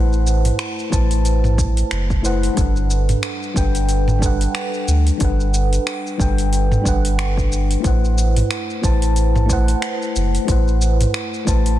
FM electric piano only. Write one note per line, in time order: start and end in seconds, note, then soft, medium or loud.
0.00 0.90 A3 medium
0.00 0.91 E4 medium
0.00 0.92 B4 medium
0.00 0.92 C5 medium
0.00 2.26 F#5 medium
0.00 0.94 A5 medium
0.90 1.08 A3 medium
0.90 1.08 E4 medium
0.90 1.09 B4 medium
0.90 1.09 C5 medium
0.90 1.10 A5 medium
2.22 2.53 A3 medium
2.22 2.53 E4 medium
2.22 2.54 B4 medium
2.22 2.54 C5 medium
2.22 2.55 F#5 loud
2.54 3.51 G3 medium
2.54 3.52 D4 medium
2.54 3.53 A4 medium
2.59 3.54 B4 medium
2.59 3.55 F#5 medium
3.54 3.72 G3 medium
3.54 3.72 D4 medium
3.54 3.73 A4 medium
3.54 3.73 B4 medium
3.54 3.73 G5 medium
4.19 5.16 G3 medium
4.19 5.17 D4 medium
4.19 5.18 A4 medium
4.24 5.18 B4 medium
4.24 5.20 F#5 medium
5.18 6.15 G3 medium
5.18 6.16 D4 medium
5.18 6.17 A4 medium
5.23 6.18 B4 medium
5.23 6.18 F#5 medium
6.18 6.36 G3 medium
6.18 6.36 D4 medium
6.18 6.36 A4 medium
6.18 6.37 B4 medium
6.18 6.37 G5 medium
6.82 7.79 G3 medium
6.82 7.80 D4 medium
6.82 7.81 A4 medium
6.87 7.82 B4 medium
6.87 7.83 F#5 medium
7.80 8.78 A3 medium
7.80 8.79 E4 medium
7.80 8.80 B4 medium
7.85 8.81 C5 medium
7.85 8.81 F#5 medium
8.82 8.99 A3 medium
8.82 9.00 E4 medium
8.82 9.00 B4 medium
8.82 9.00 C5 medium
8.82 9.01 A5 medium
9.46 10.43 A3 medium
9.46 10.44 E4 medium
9.46 10.45 B4 medium
9.51 10.46 C5 medium
9.51 10.47 F#5 loud
10.45 11.42 A3 medium
10.45 11.43 E4 medium
10.45 11.44 B4 medium
10.50 11.45 C5 medium
10.50 11.46 F#5 medium
11.45 11.63 A3 medium
11.45 11.63 E4 medium
11.45 11.64 B4 medium
11.45 11.64 C5 medium
11.45 11.65 A5 medium